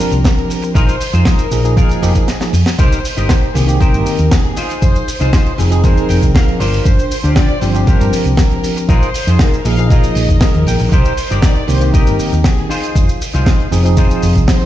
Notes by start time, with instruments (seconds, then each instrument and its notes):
Already playing: tine electric piano F3 C4 D4 G4, clean electric guitar D4 F4 G4 A#4, violin section A#4
0.00 shaker
0.12 fingered electric bass C2, closed hi-hat, shaker
0.24 violin section A#4, kick, snare, closed hi-hat, shaker
0.38 closed hi-hat
0.50 open hi-hat, shaker
0.62 muted clean electric guitar stroke, closed hi-hat, shaker
0.74 fingered electric bass A#1, clean electric guitar D#4 F4 G#4 A#4, violin section C5, kick, closed hi-hat, shaker
0.89 closed hi-hat, shaker
1.00 open hi-hat, shaker
1.13 fingered electric bass F2, clean electric guitar D#4 F4 G#4 C5, closed hi-hat, shaker
1.25 violin section A#4, kick, snare, closed hi-hat, shaker
1.39 closed hi-hat, shaker
1.51 fingered electric bass A#1, tine electric piano F3 A#3 D#4 G#4, open hi-hat, shaker
1.64 tine electric piano F3 A#3 D#4 G#4, closed hi-hat, shaker
1.76 clean electric guitar D#4 F4 G#4 A#4, violin section G#4, kick, closed hi-hat, shaker
1.89 closed hi-hat, shaker
2.02 fingered electric bass F1, tine electric piano F3 A#3 D#4 G4, open hi-hat, shaker
2.15 tine electric piano F3 A#3 D#4 A#4, kick, closed hi-hat, shaker
2.28 snare, closed hi-hat, shaker
2.40 tine electric piano F3 A#3 D#4 G#4, snare, closed hi-hat, shaker
2.53 fingered electric bass F2, open hi-hat, shaker
2.66 muted clean electric guitar stroke, snare, open hi-hat, shaker
2.79 fingered electric bass C2, clean electric guitar D#4 G4 A#4 C5, violin section C5, kick, closed hi-hat, shaker
2.92 closed hi-hat, shaker
3.05 open hi-hat, shaker
3.17 fingered electric bass G1, clean electric guitar D#4 G4 A#4 D#5, violin section C5, closed hi-hat, shaker
3.29 kick, snare, closed hi-hat, shaker
3.43 closed hi-hat
3.54 fingered electric bass C2, tine electric piano D#3 A#3 C4 G4, violin section G#4, open hi-hat, shaker
3.67 tine electric piano D#3 A#3 C4 G4, closed hi-hat, shaker
3.80 clean electric guitar D#4 G4 A#4 C5, violin section A#4, kick, closed hi-hat, shaker
3.94 fingered electric bass G1, closed hi-hat, shaker
4.06 open hi-hat, shaker
4.19 fingered electric bass D#2, closed hi-hat, shaker
4.31 violin section G#4, kick, snare, closed hi-hat, shaker
4.45 closed hi-hat
4.57 clean electric guitar D#4 F4 G#4 C5, open hi-hat, shaker
4.70 closed hi-hat, shaker
4.82 fingered electric bass F1, violin section C5, kick, closed hi-hat, shaker
4.96 closed hi-hat, shaker
5.08 open hi-hat, shaker
5.20 fingered electric bass C2, clean electric guitar D#4 F4 G#4 C5, violin section C5, closed hi-hat, shaker
5.33 kick, snare, closed hi-hat, shaker
5.46 closed hi-hat
5.58 fingered electric bass F1, tine electric piano F3 C4 D#4 G#4, violin section G#4, open hi-hat, shaker
5.70 tine electric piano F3 C4 D#4 G#4, closed hi-hat, shaker
5.83 clean electric guitar D#4 F4 G#4 C5, violin section A#4, kick, closed hi-hat, shaker
5.97 closed hi-hat, shaker
6.09 fingered electric bass F1, clean electric guitar G5, open hi-hat, shaker
6.22 fingered electric bass C2, kick, closed hi-hat, shaker
6.34 violin section A#4, clean electric guitar F5, kick, snare, closed hi-hat, shaker
6.49 closed hi-hat
6.59 fingered electric bass G1, clean electric guitar D4 F4 G4 C5, open hi-hat, shaker
6.73 open hi-hat, shaker
6.85 fingered electric bass G1, violin section C5, kick, closed hi-hat, shaker
6.99 closed hi-hat, shaker
7.11 open hi-hat, shaker
7.23 fingered electric bass D2, clean electric guitar D4 F4 G4 C5, closed hi-hat, shaker
7.35 violin section D5, kick, snare, closed hi-hat, shaker
7.49 closed hi-hat
7.60 fingered electric bass G1, tine electric piano F3 C4 D4 G4, violin section C5, open hi-hat, shaker
7.74 tine electric piano F3 C4 D4 G4, closed hi-hat, shaker
7.86 clean electric guitar D4 F4 G4 C5, violin section A#4, kick, closed hi-hat, shaker
8.00 fingered electric bass G2, closed hi-hat, shaker
8.13 open hi-hat, shaker
8.25 fingered electric bass C2, closed hi-hat, shaker
8.37 violin section A#4, kick, snare, closed hi-hat, shaker
8.51 closed hi-hat
8.64 open hi-hat, shaker
8.76 muted clean electric guitar stroke, closed hi-hat, shaker
8.89 fingered electric bass A#1, clean electric guitar D#4 F4 G#4 A#4, violin section C5, kick, closed hi-hat, shaker
9.02 closed hi-hat, shaker
9.14 open hi-hat, shaker
9.27 fingered electric bass F2, clean electric guitar D#4 F4 G#4 C5, closed hi-hat, shaker
9.39 violin section A#4, kick, snare, closed hi-hat, shaker
9.52 closed hi-hat, shaker
9.65 fingered electric bass A#1, tine electric piano F3 A#3 D#4 G#4, violin section F5, open hi-hat, shaker
9.78 tine electric piano F3 A#3 D#4 G#4, closed hi-hat, shaker
9.90 clean electric guitar D#4 F4 G#4 A#4, violin section D#5, kick, closed hi-hat, shaker
10.04 closed hi-hat, shaker
10.15 fingered electric bass A#1, open hi-hat, shaker
10.29 fingered electric bass F1, kick, closed hi-hat, shaker
10.41 violin section A#4, clean electric guitar D#5, kick, snare, closed hi-hat, shaker
10.54 fingered electric bass D#2, closed hi-hat
10.67 fingered electric bass A#1, clean electric guitar G5, open hi-hat, shaker
10.79 fingered electric bass A#1, muted clean electric guitar stroke, open hi-hat, shaker
10.91 fingered electric bass C2, clean electric guitar D#4 G4 A#4 C5, violin section C5, kick, closed hi-hat, shaker
11.05 closed hi-hat, shaker
11.17 open hi-hat, shaker
11.30 fingered electric bass G1, clean electric guitar D#4 G4 A#4 D5, closed hi-hat, shaker
11.42 violin section D5, kick, snare, closed hi-hat, shaker
11.55 closed hi-hat
11.68 fingered electric bass C2, tine electric piano D#3 A#3 C4 G4, violin section C5, open hi-hat, shaker
11.80 tine electric piano D#3 A#3 C4 G4, closed hi-hat, shaker
11.94 clean electric guitar D#4 G4 A#4 D#5, violin section A#4, kick, closed hi-hat, shaker
12.07 fingered electric bass G1, closed hi-hat, shaker
12.19 open hi-hat, shaker
12.33 fingered electric bass D#2, closed hi-hat, shaker
12.44 violin section G#4, kick, snare, closed hi-hat, shaker
12.58 closed hi-hat
12.69 clean electric guitar D#4 F4 G#4 C5, open hi-hat, shaker
12.83 closed hi-hat, shaker
12.95 fingered electric bass F1, kick, closed hi-hat, shaker
13.09 closed hi-hat, shaker
13.22 open hi-hat, shaker
13.34 fingered electric bass C2, clean electric guitar D#4 F4 G#4 C5, closed hi-hat, shaker
13.46 kick, snare, closed hi-hat, shaker
13.60 closed hi-hat
13.71 fingered electric bass F1, tine electric piano F3 C4 D#4 G#4, open hi-hat, shaker
13.83 tine electric piano F3 C4 D#4 G#4, closed hi-hat, shaker
13.97 clean electric guitar D#4 F4 G#4 C5, kick, closed hi-hat, shaker
14.10 closed hi-hat, shaker
14.22 fingered electric bass F1, open hi-hat, shaker
14.35 fingered electric bass C2, kick, closed hi-hat, shaker
14.48 violin section C5, kick, snare, closed hi-hat, shaker
14.61 closed hi-hat